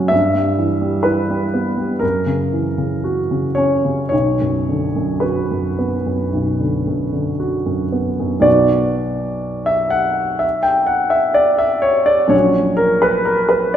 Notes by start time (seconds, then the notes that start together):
Already playing: F#2 C#3 F#3 C#4 F#4 F#5
0.08 G2 E5
0.35 G3
0.58 E3
0.81 G3
1.03 E4 B4
1.30 G3
1.54 B3
1.77 G3
1.99 F#2 A#4
2.26 C#3
2.53 E3
2.78 C#3
3.04 F#4
3.31 C#3
3.55 C#4 C#5
3.85 C#3
4.09 B1 C#5
4.41 F#2
4.68 D3
4.96 F#2
5.20 F#4 B4
5.51 F#2
5.79 B3
6.06 F#2
6.33 B1
6.60 D3
6.87 F#2
7.13 D3
7.40 F#4
7.66 F#2
7.92 B3
8.19 F#2
8.40 B1 F#3 B3 F#4 D5
9.66 E5
9.90 F#5
10.39 E5
10.63 G5
10.87 F#5
11.10 E5
11.34 D5
11.59 E5
11.82 C#5
12.06 D5
12.28 A#1 F#3 C#4 F#4 C#5
12.77 A#4
13.02 B4
13.25 A#4
13.49 B4